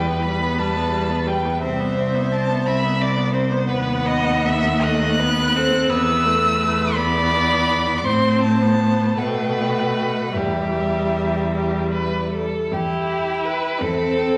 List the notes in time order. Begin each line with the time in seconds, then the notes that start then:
Already playing: E2 B4 G5
0.06 B3
0.23 G3 B5
0.40 B3
0.59 E2 G3 A5
0.76 B3
0.93 G3
1.10 B3
1.27 G3 G5
1.46 B3
1.61 C2 C4 C5 E5
1.80 B3
1.97 C4
2.15 B3
2.32 C4 A5
2.50 B3
2.66 C2 C4 E5 B5
2.83 B3
3.00 C4 D5
3.17 B3
3.34 C4 C5
3.50 B3
3.67 D#2 B3 B4 F#5
4.06 D#5
4.45 E5
4.83 A3 D#5 F#6
5.19 B3 B4
5.55 C4 A4
5.90 E2 B3 B4 E6
6.26 A3
6.61 A3
6.95 B3 D5 B5
7.98 D6
8.04 A2 C4 C5 C6
8.42 A5
8.62 B3
9.18 B2 A3 B4 F#5
9.26 G5
9.34 F#5
9.44 G5
9.52 F#5
9.61 G5
9.71 F#5
9.78 G5
9.87 F#5
9.97 G5
10.06 F#5
10.36 E2 G3 G4 E5
11.54 G4
11.92 B4
12.33 A4
12.70 E2 E4 G4 G5
13.09 B5
13.45 B4 G5
13.81 E2 C4 A4 B5
14.18 G5